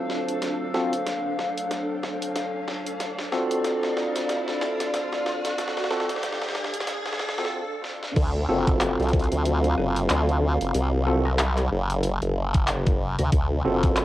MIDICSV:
0, 0, Header, 1, 7, 480
1, 0, Start_track
1, 0, Tempo, 645161
1, 315, Time_signature, 4, 2, 24, 8
1, 10452, End_track
2, 0, Start_track
2, 0, Title_t, "Ambient pad"
2, 0, Program_c, 0, 92
2, 0, Note_on_c, 0, 62, 69
2, 0, Note_on_c, 0, 69, 76
2, 0, Note_on_c, 0, 88, 74
2, 46, Note_on_c, 0, 77, 74
2, 198, Note_off_c, 0, 88, 0
2, 5595, Note_off_c, 0, 69, 0
2, 5596, Note_off_c, 0, 62, 0
2, 5596, Note_off_c, 0, 77, 0
2, 10452, End_track
3, 0, Start_track
3, 0, Title_t, "Tine electric piano"
3, 0, Program_c, 1, 4
3, 0, Note_on_c, 1, 60, 95
3, 0, Note_on_c, 1, 65, 93
3, 0, Note_on_c, 1, 66, 89
3, 0, Note_on_c, 1, 69, 108
3, 530, Note_off_c, 1, 60, 0
3, 530, Note_off_c, 1, 65, 0
3, 530, Note_off_c, 1, 66, 0
3, 530, Note_off_c, 1, 69, 0
3, 552, Note_on_c, 1, 60, 96
3, 552, Note_on_c, 1, 66, 87
3, 553, Note_on_c, 1, 65, 88
3, 553, Note_on_c, 1, 69, 105
3, 682, Note_off_c, 1, 60, 0
3, 682, Note_off_c, 1, 65, 0
3, 682, Note_off_c, 1, 66, 0
3, 682, Note_off_c, 1, 69, 0
3, 2473, Note_on_c, 1, 66, 94
3, 2474, Note_on_c, 1, 60, 99
3, 2474, Note_on_c, 1, 65, 91
3, 2474, Note_on_c, 1, 69, 110
3, 4370, Note_off_c, 1, 60, 0
3, 4370, Note_off_c, 1, 65, 0
3, 4370, Note_off_c, 1, 66, 0
3, 4370, Note_off_c, 1, 69, 0
3, 4394, Note_on_c, 1, 60, 96
3, 4394, Note_on_c, 1, 65, 89
3, 4394, Note_on_c, 1, 66, 88
3, 4394, Note_on_c, 1, 69, 109
3, 4523, Note_off_c, 1, 60, 0
3, 4523, Note_off_c, 1, 65, 0
3, 4523, Note_off_c, 1, 66, 0
3, 4523, Note_off_c, 1, 69, 0
3, 5494, Note_on_c, 1, 69, 88
3, 5495, Note_on_c, 1, 60, 85
3, 5495, Note_on_c, 1, 65, 75
3, 5495, Note_on_c, 1, 66, 76
3, 5661, Note_off_c, 1, 60, 0
3, 5661, Note_off_c, 1, 65, 0
3, 5661, Note_off_c, 1, 66, 0
3, 5661, Note_off_c, 1, 69, 0
3, 6315, Note_on_c, 1, 60, 102
3, 6315, Note_on_c, 1, 65, 94
3, 6315, Note_on_c, 1, 66, 95
3, 6315, Note_on_c, 1, 69, 114
3, 8211, Note_off_c, 1, 60, 0
3, 8211, Note_off_c, 1, 65, 0
3, 8211, Note_off_c, 1, 66, 0
3, 8211, Note_off_c, 1, 69, 0
3, 8233, Note_on_c, 1, 66, 91
3, 8234, Note_on_c, 1, 60, 97
3, 8234, Note_on_c, 1, 65, 89
3, 8234, Note_on_c, 1, 69, 113
3, 8362, Note_off_c, 1, 66, 0
3, 8363, Note_off_c, 1, 60, 0
3, 8363, Note_off_c, 1, 65, 0
3, 8363, Note_off_c, 1, 69, 0
3, 10154, Note_on_c, 1, 60, 101
3, 10154, Note_on_c, 1, 66, 95
3, 10155, Note_on_c, 1, 65, 92
3, 10155, Note_on_c, 1, 69, 115
3, 10452, Note_off_c, 1, 60, 0
3, 10452, Note_off_c, 1, 65, 0
3, 10452, Note_off_c, 1, 66, 0
3, 10452, Note_off_c, 1, 69, 0
3, 10452, End_track
4, 0, Start_track
4, 0, Title_t, "Ambient pad"
4, 0, Program_c, 2, 92
4, 0, Note_on_c, 2, 54, 78
4, 0, Note_on_c, 2, 62, 71
4, 0, Note_on_c, 2, 72, 72
4, 0, Note_on_c, 2, 77, 90
4, 2233, Note_off_c, 2, 77, 0
4, 2237, Note_on_c, 2, 74, 94
4, 5565, Note_off_c, 2, 54, 0
4, 5565, Note_off_c, 2, 62, 0
4, 5565, Note_off_c, 2, 72, 0
4, 5594, Note_off_c, 2, 74, 0
4, 6072, Note_on_c, 2, 48, 82
4, 6073, Note_on_c, 2, 54, 73
4, 6073, Note_on_c, 2, 77, 94
4, 9912, Note_off_c, 2, 77, 0
4, 9913, Note_on_c, 2, 62, 89
4, 10452, Note_off_c, 2, 48, 0
4, 10452, Note_off_c, 2, 54, 0
4, 10452, Note_off_c, 2, 62, 0
4, 10452, End_track
5, 0, Start_track
5, 0, Title_t, "Wobble bass"
5, 0, Program_c, 3, 39
5, 6076, Note_on_c, 3, 38, 96
5, 6299, Note_off_c, 3, 38, 0
5, 6315, Note_on_c, 3, 30, 95
5, 6672, Note_off_c, 3, 30, 0
5, 6695, Note_on_c, 3, 36, 105
5, 6912, Note_off_c, 3, 36, 0
5, 6934, Note_on_c, 3, 38, 96
5, 7259, Note_off_c, 3, 38, 0
5, 7276, Note_on_c, 3, 30, 105
5, 7499, Note_off_c, 3, 30, 0
5, 7517, Note_on_c, 3, 38, 99
5, 7873, Note_off_c, 3, 38, 0
5, 7895, Note_on_c, 3, 30, 101
5, 7979, Note_off_c, 3, 30, 0
5, 7995, Note_on_c, 3, 36, 96
5, 8699, Note_off_c, 3, 36, 0
5, 8716, Note_on_c, 3, 30, 96
5, 9072, Note_off_c, 3, 30, 0
5, 9096, Note_on_c, 3, 30, 95
5, 9793, Note_off_c, 3, 30, 0
5, 9816, Note_on_c, 3, 38, 99
5, 9899, Note_off_c, 3, 38, 0
5, 9914, Note_on_c, 3, 38, 104
5, 10138, Note_off_c, 3, 38, 0
5, 10156, Note_on_c, 3, 30, 95
5, 10452, Note_off_c, 3, 30, 0
5, 10452, End_track
6, 0, Start_track
6, 0, Title_t, "Riser"
6, 0, Program_c, 4, 103
6, 0, Note_on_c, 4, 60, 74
6, 5595, Note_off_c, 4, 60, 0
6, 10452, End_track
7, 0, Start_track
7, 0, Title_t, "Drums"
7, 72, Note_on_c, 9, 38, 78
7, 146, Note_off_c, 9, 38, 0
7, 211, Note_on_c, 9, 42, 58
7, 286, Note_off_c, 9, 42, 0
7, 311, Note_on_c, 9, 38, 82
7, 311, Note_on_c, 9, 42, 51
7, 386, Note_off_c, 9, 38, 0
7, 386, Note_off_c, 9, 42, 0
7, 552, Note_on_c, 9, 38, 85
7, 627, Note_off_c, 9, 38, 0
7, 692, Note_on_c, 9, 42, 57
7, 766, Note_off_c, 9, 42, 0
7, 793, Note_on_c, 9, 38, 83
7, 793, Note_on_c, 9, 42, 49
7, 867, Note_off_c, 9, 38, 0
7, 867, Note_off_c, 9, 42, 0
7, 1033, Note_on_c, 9, 38, 86
7, 1107, Note_off_c, 9, 38, 0
7, 1172, Note_on_c, 9, 42, 63
7, 1246, Note_off_c, 9, 42, 0
7, 1271, Note_on_c, 9, 38, 86
7, 1271, Note_on_c, 9, 42, 50
7, 1346, Note_off_c, 9, 38, 0
7, 1346, Note_off_c, 9, 42, 0
7, 1512, Note_on_c, 9, 38, 89
7, 1587, Note_off_c, 9, 38, 0
7, 1652, Note_on_c, 9, 42, 61
7, 1726, Note_off_c, 9, 42, 0
7, 1753, Note_on_c, 9, 38, 89
7, 1753, Note_on_c, 9, 42, 51
7, 1827, Note_off_c, 9, 38, 0
7, 1827, Note_off_c, 9, 42, 0
7, 1992, Note_on_c, 9, 38, 90
7, 2066, Note_off_c, 9, 38, 0
7, 2131, Note_on_c, 9, 42, 63
7, 2206, Note_off_c, 9, 42, 0
7, 2233, Note_on_c, 9, 38, 95
7, 2233, Note_on_c, 9, 42, 54
7, 2307, Note_off_c, 9, 38, 0
7, 2307, Note_off_c, 9, 42, 0
7, 2371, Note_on_c, 9, 38, 80
7, 2445, Note_off_c, 9, 38, 0
7, 2473, Note_on_c, 9, 38, 97
7, 2547, Note_off_c, 9, 38, 0
7, 2613, Note_on_c, 9, 42, 63
7, 2687, Note_off_c, 9, 42, 0
7, 2712, Note_on_c, 9, 38, 91
7, 2712, Note_on_c, 9, 42, 52
7, 2787, Note_off_c, 9, 38, 0
7, 2787, Note_off_c, 9, 42, 0
7, 2851, Note_on_c, 9, 38, 86
7, 2926, Note_off_c, 9, 38, 0
7, 2953, Note_on_c, 9, 38, 93
7, 3027, Note_off_c, 9, 38, 0
7, 3092, Note_on_c, 9, 38, 81
7, 3092, Note_on_c, 9, 42, 63
7, 3167, Note_off_c, 9, 38, 0
7, 3167, Note_off_c, 9, 42, 0
7, 3193, Note_on_c, 9, 38, 97
7, 3193, Note_on_c, 9, 42, 50
7, 3268, Note_off_c, 9, 38, 0
7, 3268, Note_off_c, 9, 42, 0
7, 3331, Note_on_c, 9, 38, 83
7, 3406, Note_off_c, 9, 38, 0
7, 3432, Note_on_c, 9, 38, 94
7, 3506, Note_off_c, 9, 38, 0
7, 3572, Note_on_c, 9, 38, 86
7, 3572, Note_on_c, 9, 42, 68
7, 3647, Note_off_c, 9, 38, 0
7, 3647, Note_off_c, 9, 42, 0
7, 3673, Note_on_c, 9, 38, 98
7, 3673, Note_on_c, 9, 42, 52
7, 3747, Note_off_c, 9, 38, 0
7, 3747, Note_off_c, 9, 42, 0
7, 3812, Note_on_c, 9, 38, 87
7, 3886, Note_off_c, 9, 38, 0
7, 3913, Note_on_c, 9, 38, 103
7, 3987, Note_off_c, 9, 38, 0
7, 4052, Note_on_c, 9, 38, 84
7, 4052, Note_on_c, 9, 42, 64
7, 4126, Note_off_c, 9, 38, 0
7, 4126, Note_off_c, 9, 42, 0
7, 4153, Note_on_c, 9, 38, 103
7, 4153, Note_on_c, 9, 42, 54
7, 4222, Note_off_c, 9, 38, 0
7, 4222, Note_on_c, 9, 38, 91
7, 4227, Note_off_c, 9, 42, 0
7, 4292, Note_off_c, 9, 38, 0
7, 4292, Note_on_c, 9, 38, 89
7, 4343, Note_off_c, 9, 38, 0
7, 4343, Note_on_c, 9, 38, 88
7, 4394, Note_off_c, 9, 38, 0
7, 4394, Note_on_c, 9, 38, 105
7, 4464, Note_off_c, 9, 38, 0
7, 4464, Note_on_c, 9, 38, 93
7, 4533, Note_off_c, 9, 38, 0
7, 4533, Note_on_c, 9, 38, 85
7, 4533, Note_on_c, 9, 42, 67
7, 4584, Note_off_c, 9, 38, 0
7, 4584, Note_on_c, 9, 38, 85
7, 4608, Note_off_c, 9, 42, 0
7, 4635, Note_off_c, 9, 38, 0
7, 4635, Note_on_c, 9, 38, 106
7, 4635, Note_on_c, 9, 42, 53
7, 4705, Note_off_c, 9, 38, 0
7, 4705, Note_on_c, 9, 38, 95
7, 4709, Note_off_c, 9, 42, 0
7, 4774, Note_off_c, 9, 38, 0
7, 4774, Note_on_c, 9, 38, 96
7, 4825, Note_off_c, 9, 38, 0
7, 4825, Note_on_c, 9, 38, 98
7, 4873, Note_off_c, 9, 38, 0
7, 4873, Note_on_c, 9, 38, 113
7, 4943, Note_off_c, 9, 38, 0
7, 4943, Note_on_c, 9, 38, 98
7, 5013, Note_on_c, 9, 42, 68
7, 5018, Note_off_c, 9, 38, 0
7, 5063, Note_on_c, 9, 38, 87
7, 5087, Note_off_c, 9, 42, 0
7, 5114, Note_off_c, 9, 38, 0
7, 5114, Note_on_c, 9, 38, 106
7, 5114, Note_on_c, 9, 42, 55
7, 5188, Note_off_c, 9, 38, 0
7, 5188, Note_off_c, 9, 42, 0
7, 5251, Note_on_c, 9, 38, 97
7, 5303, Note_off_c, 9, 38, 0
7, 5303, Note_on_c, 9, 38, 94
7, 5354, Note_off_c, 9, 38, 0
7, 5354, Note_on_c, 9, 38, 108
7, 5421, Note_off_c, 9, 38, 0
7, 5421, Note_on_c, 9, 38, 98
7, 5492, Note_off_c, 9, 38, 0
7, 5492, Note_on_c, 9, 38, 92
7, 5542, Note_off_c, 9, 38, 0
7, 5542, Note_on_c, 9, 38, 94
7, 5616, Note_off_c, 9, 38, 0
7, 5833, Note_on_c, 9, 38, 63
7, 5907, Note_off_c, 9, 38, 0
7, 5973, Note_on_c, 9, 38, 71
7, 6047, Note_off_c, 9, 38, 0
7, 6074, Note_on_c, 9, 42, 72
7, 6074, Note_on_c, 9, 49, 104
7, 6075, Note_on_c, 9, 36, 116
7, 6148, Note_off_c, 9, 42, 0
7, 6148, Note_off_c, 9, 49, 0
7, 6150, Note_off_c, 9, 36, 0
7, 6453, Note_on_c, 9, 42, 54
7, 6454, Note_on_c, 9, 36, 105
7, 6527, Note_off_c, 9, 42, 0
7, 6529, Note_off_c, 9, 36, 0
7, 6553, Note_on_c, 9, 39, 126
7, 6553, Note_on_c, 9, 42, 70
7, 6627, Note_off_c, 9, 39, 0
7, 6627, Note_off_c, 9, 42, 0
7, 6693, Note_on_c, 9, 42, 18
7, 6714, Note_off_c, 9, 42, 0
7, 6714, Note_on_c, 9, 42, 22
7, 6759, Note_off_c, 9, 42, 0
7, 6759, Note_on_c, 9, 42, 25
7, 6793, Note_off_c, 9, 42, 0
7, 6793, Note_on_c, 9, 42, 28
7, 6794, Note_on_c, 9, 36, 101
7, 6840, Note_off_c, 9, 42, 0
7, 6840, Note_on_c, 9, 42, 32
7, 6869, Note_off_c, 9, 36, 0
7, 6872, Note_off_c, 9, 42, 0
7, 6872, Note_on_c, 9, 42, 34
7, 6931, Note_off_c, 9, 42, 0
7, 6931, Note_on_c, 9, 42, 53
7, 7006, Note_off_c, 9, 42, 0
7, 7033, Note_on_c, 9, 42, 69
7, 7107, Note_off_c, 9, 42, 0
7, 7172, Note_on_c, 9, 42, 38
7, 7247, Note_off_c, 9, 42, 0
7, 7273, Note_on_c, 9, 37, 38
7, 7347, Note_off_c, 9, 37, 0
7, 7411, Note_on_c, 9, 42, 55
7, 7486, Note_off_c, 9, 42, 0
7, 7512, Note_on_c, 9, 39, 126
7, 7512, Note_on_c, 9, 42, 70
7, 7586, Note_off_c, 9, 39, 0
7, 7586, Note_off_c, 9, 42, 0
7, 7653, Note_on_c, 9, 42, 39
7, 7728, Note_off_c, 9, 42, 0
7, 7892, Note_on_c, 9, 42, 52
7, 7967, Note_off_c, 9, 42, 0
7, 7993, Note_on_c, 9, 42, 72
7, 8067, Note_off_c, 9, 42, 0
7, 8372, Note_on_c, 9, 37, 52
7, 8447, Note_off_c, 9, 37, 0
7, 8473, Note_on_c, 9, 39, 125
7, 8473, Note_on_c, 9, 42, 73
7, 8548, Note_off_c, 9, 39, 0
7, 8548, Note_off_c, 9, 42, 0
7, 8612, Note_on_c, 9, 39, 39
7, 8612, Note_on_c, 9, 42, 40
7, 8686, Note_off_c, 9, 39, 0
7, 8686, Note_off_c, 9, 42, 0
7, 8852, Note_on_c, 9, 42, 52
7, 8927, Note_off_c, 9, 42, 0
7, 8951, Note_on_c, 9, 42, 68
7, 9026, Note_off_c, 9, 42, 0
7, 9091, Note_on_c, 9, 42, 37
7, 9166, Note_off_c, 9, 42, 0
7, 9331, Note_on_c, 9, 42, 57
7, 9334, Note_on_c, 9, 36, 113
7, 9405, Note_off_c, 9, 42, 0
7, 9408, Note_off_c, 9, 36, 0
7, 9432, Note_on_c, 9, 39, 127
7, 9432, Note_on_c, 9, 42, 70
7, 9506, Note_off_c, 9, 39, 0
7, 9506, Note_off_c, 9, 42, 0
7, 9571, Note_on_c, 9, 42, 39
7, 9573, Note_on_c, 9, 36, 121
7, 9646, Note_off_c, 9, 42, 0
7, 9648, Note_off_c, 9, 36, 0
7, 9811, Note_on_c, 9, 37, 39
7, 9811, Note_on_c, 9, 42, 57
7, 9886, Note_off_c, 9, 37, 0
7, 9886, Note_off_c, 9, 42, 0
7, 9913, Note_on_c, 9, 42, 69
7, 9914, Note_on_c, 9, 36, 121
7, 9987, Note_off_c, 9, 42, 0
7, 9989, Note_off_c, 9, 36, 0
7, 10291, Note_on_c, 9, 42, 55
7, 10294, Note_on_c, 9, 36, 114
7, 10365, Note_off_c, 9, 42, 0
7, 10368, Note_off_c, 9, 36, 0
7, 10391, Note_on_c, 9, 39, 124
7, 10391, Note_on_c, 9, 42, 70
7, 10452, Note_off_c, 9, 39, 0
7, 10452, Note_off_c, 9, 42, 0
7, 10452, End_track
0, 0, End_of_file